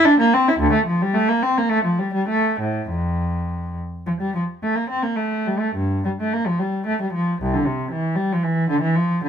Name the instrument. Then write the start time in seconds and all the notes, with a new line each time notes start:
cello
0.05 D4
0.20 A#3
0.34 C4
0.49 E4
0.60 D2
0.73 A3
0.86 F3
1.02 G3
1.14 A3
1.29 A#3
1.43 C4
1.58 A#3
1.70 A3
1.84 F3
1.99 G3
2.14 G3
2.29 A3
2.61 A2
2.90 F2
4.07 F3
4.21 G3
4.35 F3
4.63 A3
4.75 A#3
4.90 C4
5.03 A#3
5.16 A3
5.47 G3
5.59 A3
5.76 G2
6.05 G3
6.21 A3
6.33 A#3
6.47 F3
6.59 G3
6.86 A3
7.02 G3
7.14 F3
7.42 C2
7.54 D3
7.66 C3
7.92 E3
8.16 G3
8.33 F3
8.43 E3
8.70 D3
8.82 E3
8.95 F3
9.24 D3